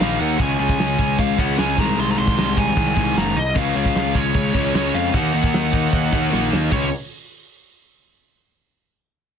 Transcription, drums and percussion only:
0.00 snare, open hi-hat
0.40 kick, crash
0.69 kick
0.79 snare, open hi-hat
0.99 kick
1.19 kick, open hi-hat
1.38 kick
1.58 snare, open hi-hat
1.78 kick
1.98 open hi-hat
2.27 kick
2.38 snare, open hi-hat
2.57 kick
2.77 kick, open hi-hat
2.97 kick
3.17 snare, open hi-hat
3.56 kick, crash
3.85 kick
3.95 snare, open hi-hat
4.15 kick
4.35 kick, open hi-hat
4.55 kick
4.75 snare, open hi-hat
5.14 kick, open hi-hat
5.44 kick
5.54 snare, open hi-hat
5.73 kick
5.93 kick, open hi-hat
6.13 kick
6.33 snare
6.53 snare
6.72 kick, open hi-hat

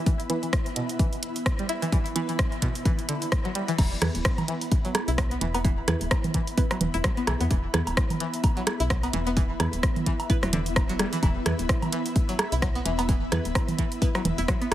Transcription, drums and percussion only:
0.06 kick, closed hi-hat
0.20 closed hi-hat
0.30 closed hi-hat
0.43 closed hi-hat
0.53 kick, cross-stick, closed hi-hat
0.66 closed hi-hat
0.76 closed hi-hat
0.89 closed hi-hat
0.99 kick, closed hi-hat
1.13 closed hi-hat
1.23 closed hi-hat
1.36 closed hi-hat
1.46 kick, cross-stick, closed hi-hat
1.59 closed hi-hat
1.69 closed hi-hat
1.82 closed hi-hat
1.92 kick, closed hi-hat
2.06 closed hi-hat
2.16 closed hi-hat
2.29 closed hi-hat
2.39 kick, cross-stick, closed hi-hat
2.52 closed hi-hat
2.62 kick, closed hi-hat
2.75 closed hi-hat
2.85 kick, closed hi-hat
2.99 closed hi-hat
3.09 closed hi-hat
3.22 closed hi-hat
3.32 kick, cross-stick, closed hi-hat
3.45 closed hi-hat
3.55 closed hi-hat
3.68 closed hi-hat
3.78 kick, closed hi-hat, crash, low woodblock
4.02 cross-stick, closed hi-hat, low conga
4.15 closed hi-hat
4.25 kick, cross-stick, closed hi-hat
4.38 closed hi-hat, low conga, low woodblock
4.48 closed hi-hat
4.61 closed hi-hat
4.72 kick, closed hi-hat
4.85 closed hi-hat
4.95 cross-stick, closed hi-hat, low woodblock
5.08 closed hi-hat
5.18 kick, cross-stick, closed hi-hat
5.31 closed hi-hat
5.41 closed hi-hat
5.54 closed hi-hat, low woodblock
5.65 kick, closed hi-hat
5.88 cross-stick, closed hi-hat, low conga
6.01 closed hi-hat
6.11 kick, cross-stick, closed hi-hat, low woodblock
6.24 closed hi-hat, low conga
6.34 kick, closed hi-hat
6.47 closed hi-hat
6.58 kick, closed hi-hat
6.71 cross-stick, closed hi-hat, low woodblock
6.81 closed hi-hat, low conga
6.94 closed hi-hat
7.04 kick, cross-stick, closed hi-hat
7.17 closed hi-hat
7.27 cross-stick, closed hi-hat, low woodblock
7.41 closed hi-hat
7.51 kick, closed hi-hat
7.74 cross-stick, closed hi-hat, low conga
7.87 closed hi-hat, low woodblock
7.97 kick, cross-stick, closed hi-hat
8.10 closed hi-hat, low conga
8.20 closed hi-hat
8.34 closed hi-hat
8.44 kick, closed hi-hat, low woodblock
8.57 closed hi-hat
8.67 cross-stick, closed hi-hat
8.80 closed hi-hat
8.90 kick, cross-stick, closed hi-hat
9.03 closed hi-hat, low woodblock
9.13 closed hi-hat
9.27 closed hi-hat
9.37 kick, closed hi-hat
9.60 cross-stick, closed hi-hat, low conga, low woodblock
9.73 closed hi-hat
9.83 kick, cross-stick, closed hi-hat
9.96 closed hi-hat, low conga
10.06 kick, closed hi-hat
10.20 closed hi-hat, low woodblock
10.30 kick, closed hi-hat
10.43 cross-stick, closed hi-hat
10.53 closed hi-hat, low conga
10.66 closed hi-hat
10.76 kick, cross-stick, closed hi-hat, low woodblock
10.89 closed hi-hat
10.99 cross-stick, closed hi-hat
11.13 closed hi-hat
11.23 kick, closed hi-hat, low woodblock
11.46 cross-stick, closed hi-hat, low conga
11.59 closed hi-hat
11.69 kick, cross-stick, closed hi-hat
11.82 closed hi-hat, low conga, low woodblock
11.92 closed hi-hat
12.06 closed hi-hat
12.16 kick, closed hi-hat
12.29 closed hi-hat
12.39 cross-stick, closed hi-hat, low woodblock
12.52 closed hi-hat
12.62 kick, cross-stick, closed hi-hat
12.75 closed hi-hat
12.86 closed hi-hat
12.99 closed hi-hat, low woodblock
13.09 kick, closed hi-hat
13.32 cross-stick, closed hi-hat, low conga
13.45 closed hi-hat
13.55 kick, cross-stick, closed hi-hat, low woodblock
13.68 closed hi-hat, low conga
13.79 kick, closed hi-hat
13.92 closed hi-hat
14.02 kick, closed hi-hat
14.15 cross-stick, closed hi-hat, low woodblock
14.25 closed hi-hat, low conga
14.38 closed hi-hat
14.48 kick, cross-stick, closed hi-hat
14.62 closed hi-hat

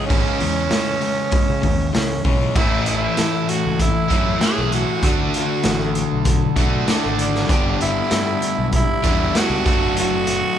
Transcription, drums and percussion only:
0.10 kick, open hi-hat
0.40 open hi-hat
0.71 snare, open hi-hat
1.01 open hi-hat
1.32 kick, open hi-hat
1.63 kick, open hi-hat
1.94 snare, open hi-hat
2.25 kick, open hi-hat
2.56 kick, crash
2.86 closed hi-hat
3.17 snare, closed hi-hat
3.49 closed hi-hat
3.80 kick, closed hi-hat
4.10 kick, closed hi-hat
4.41 snare, closed hi-hat
4.72 closed hi-hat
5.03 kick, closed hi-hat
5.34 closed hi-hat
5.63 snare, closed hi-hat
5.95 closed hi-hat
6.25 kick, closed hi-hat
6.56 kick, closed hi-hat
6.88 snare, closed hi-hat
7.19 closed hi-hat
7.35 snare
7.49 kick, closed hi-hat
7.81 closed hi-hat
8.11 snare, closed hi-hat
8.42 closed hi-hat
8.72 kick, closed hi-hat
9.04 kick, closed hi-hat
9.35 snare, closed hi-hat
9.66 kick, closed hi-hat
9.97 closed hi-hat
10.27 closed hi-hat

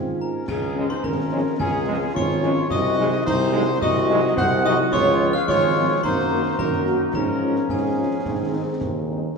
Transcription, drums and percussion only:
0.48 concert bass drum, snare, crash
0.89 snare
1.03 concert bass drum, snare
1.59 concert bass drum, snare
2.16 concert bass drum, snare
2.29 snare
2.43 snare
2.70 concert bass drum, snare, crash
3.12 snare
3.27 concert bass drum, snare
3.82 concert bass drum, snare
4.37 concert bass drum, snare
4.51 snare
4.65 snare
4.92 concert bass drum, snare, crash
5.34 snare
5.48 concert bass drum, snare
6.03 concert bass drum, snare
6.59 concert bass drum, snare
6.73 snare
6.86 snare
7.13 concert bass drum, snare, crash
7.56 snare
7.69 concert bass drum, snare
8.25 concert bass drum, snare
8.81 concert bass drum, snare

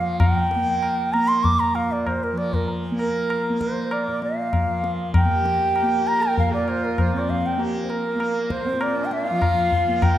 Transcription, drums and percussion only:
0.20 tabla na, tabla ge
0.51 tabla te
0.82 tabla na
1.14 tabla na
1.44 tabla tin, tabla ge
1.75 tabla na
2.07 tabla na, tabla ge
2.37 tabla te
2.53 tabla ge
2.68 tabla tin
2.99 tabla na
3.30 tabla na
3.61 tabla ke
3.91 tabla na
4.22 tabla te
4.53 tabla na, tabla ge
4.84 tabla te
5.14 tabla na, tabla ge
5.45 tabla te
5.76 tabla na
6.07 tabla na
6.37 tabla tin, tabla ge
6.68 tabla na
6.98 tabla na, tabla ge
7.29 tabla ge
7.59 tabla tin
7.90 tabla na
8.20 tabla na
8.50 tabla ke
8.81 tabla na
9.11 tabla te
9.42 tabla na, tabla ge
9.72 tabla ge
10.02 tabla na, tabla ge

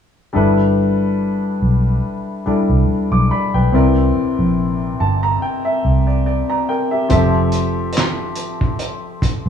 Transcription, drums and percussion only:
7.10 kick, closed hi-hat
7.52 closed hi-hat
7.93 closed hi-hat
7.97 snare, clap
8.36 closed hi-hat
8.61 kick
8.79 closed hi-hat
9.22 kick, closed hi-hat

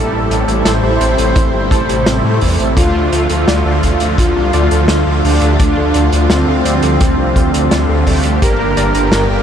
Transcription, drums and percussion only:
0.31 closed hi-hat
0.48 closed hi-hat
0.65 snare, closed hi-hat
1.01 closed hi-hat
1.18 closed hi-hat
1.36 kick, closed hi-hat
1.71 kick, closed hi-hat
1.89 closed hi-hat
2.06 snare, closed hi-hat
2.41 kick, open hi-hat
2.60 closed hi-hat
2.77 kick, closed hi-hat
3.12 closed hi-hat
3.29 closed hi-hat
3.48 snare, closed hi-hat
3.83 kick, closed hi-hat
4.00 closed hi-hat
4.18 kick, closed hi-hat
4.53 closed hi-hat
4.71 closed hi-hat
4.88 snare, closed hi-hat
5.25 open hi-hat
5.41 closed hi-hat
5.60 kick, closed hi-hat
5.94 closed hi-hat
6.12 closed hi-hat
6.30 snare, closed hi-hat
6.65 closed hi-hat
6.82 closed hi-hat
7.00 kick, closed hi-hat
7.36 kick, closed hi-hat
7.54 closed hi-hat
7.71 snare, closed hi-hat
8.07 kick, open hi-hat
8.23 closed hi-hat
8.42 kick, closed hi-hat
8.77 closed hi-hat
8.95 closed hi-hat
9.12 snare, closed hi-hat

